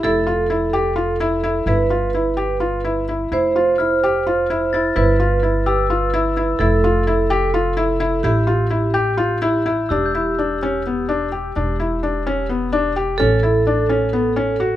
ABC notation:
X:1
M:7/8
L:1/16
Q:1/4=128
K:Flyd
V:1 name="Glockenspiel"
z12 z2 | z12 z2 | z4 f'8 a'2- | a'2 z4 e'8 |
z12 z2 | z6 g'8 | [K:Edor] e' g'8 z4 z | z12 z2 |
z12 z2 |]
V:2 name="Vibraphone"
A12- A2 | B12 z2 | c12- c2 | B12- B2 |
A12- A2 | G12 z2 | [K:Edor] G12- G2- | G12- G2 |
A12- A2 |]
V:3 name="Felt piano"
E2 F2 E2 G2 F2 E2 E2 | E2 F2 E2 G2 F2 E2 E2 | E2 F2 E2 G2 F2 E2 E2 | E2 F2 E2 G2 F2 E2 E2 |
E2 F2 E2 G2 F2 E2 E2 | E2 F2 E2 G2 F2 E2 E2 | [K:Edor] D2 E2 D2 C2 B,2 D2 G2 | D2 E2 D2 C2 B,2 D2 G2 |
C2 E2 D2 C2 B,2 C2 F2 |]
V:4 name="Upright bass" clef=bass
F,,,12- F,,,2 | G,,,12- G,,,2 | F,,,12- F,,,2 | G,,,12- G,,,2 |
F,,,12- F,,,2 | A,,,12- A,,,2 | [K:Edor] E,,,12- E,,,2 | E,,,12- E,,,2 |
A,,,12- A,,,2 |]